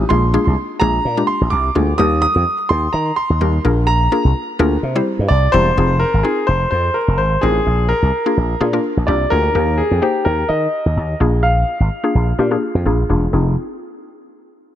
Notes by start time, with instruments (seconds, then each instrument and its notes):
Already playing: grand piano D#6
0.09 slap bass A#1, synth pluck G#3 A#3 D4 F4 G#4, grand piano C6
0.34 synth pluck G#3 A#3 D4 F4 G#4
0.47 slap bass C2
0.80 slap bass A#1, synth pluck G#3 A#3 D4 F4 G#4, grand piano A#5
1.05 slap bass A#2
1.17 synth pluck G#3 A#3 D4 F4 G4
1.27 grand piano C6
1.41 slap bass A#1
1.50 slap bass C2, grand piano D6
1.75 slap bass D2, synth pluck G#3 A#3 D4 F4 G#4
1.98 slap bass D#2, synth pluck G3 A#3 D#4 G4 A#4, grand piano D#6
2.22 grand piano D#6
2.36 slap bass F2
2.69 slap bass D#2, grand piano C6
2.93 slap bass D#3, grand piano A#5
3.16 grand piano C6
3.30 slap bass D#2
3.41 slap bass D#2, synth pluck G3 A#3 D#4 G4 A#4
3.65 slap bass A#1, synth pluck A#3 D4 F4 G#4 A#4
3.87 grand piano A#5
4.12 synth pluck A#3 D4 F4 G#4 A#4
4.25 slap bass C2
4.59 slap bass D2, synth pluck A#3 D4 F4 G#4 A#4
4.83 slap bass C3
4.95 synth pluck G3 C4 E4 G4 C5
5.19 slap bass G2
5.28 slap bass C2, grand piano D5
5.52 slap bass E1, synth pluck G3 C4 E4 G4 C5, grand piano C5
5.77 slap bass F1, synth pluck C4 D#4 F4 G#4
6.00 grand piano A#4
6.14 slap bass G#1
6.23 synth pluck C4 D#4 F4 G#4, grand piano G#4
6.47 slap bass F1, grand piano C5
6.71 slap bass F2, grand piano C5
6.94 grand piano A#4
7.08 slap bass F1
7.18 slap bass G#1, grand piano C5
7.41 slap bass A1, synth pluck C4 D#4 F4 A#4, grand piano G#4
7.66 slap bass A#1
7.89 grand piano A#4
8.02 slap bass C2
8.26 synth pluck A#3 D4 F4 G#4
8.37 slap bass A#1
8.61 slap bass A#2, synth pluck A#3 D4 F4 G#4
8.73 synth pluck A#3 D4 F4 A#4
8.97 slap bass A#1
9.07 slap bass C2, synth pluck A#3 D4 F4 G4, grand piano D5
9.30 slap bass D2, synth pluck A#3 D4 F4 G#4, grand piano A#4
9.55 slap bass D#2, synth pluck A#3 D#4 G4 A#4
9.78 grand piano G#4
9.91 slap bass F2
10.02 synth pluck A#3 D#4 G4 C5, grand piano G4
10.25 slap bass D#2, grand piano A#4
10.49 slap bass D#3, grand piano D#5
10.86 slap bass D#2
10.97 slap bass D#2
11.20 slap bass A#1, synth pluck A#3 D4 F4 G#4
11.43 grand piano F5
11.80 slap bass G#1
12.04 synth pluck A#3 D4 F4 G#4
12.15 slap bass A#1
12.39 slap bass A#2, synth pluck A#3 D4 F4 G4
12.51 synth pluck A#3 D4 F4 G#4
12.75 slap bass F2
12.86 slap bass A#1, synth pluck A#3 D4 F4 G#4
13.09 slap bass E1, synth pluck A#3 D4 F4 G#4
13.33 slap bass F1, synth pluck C4 D#4 F4 G#4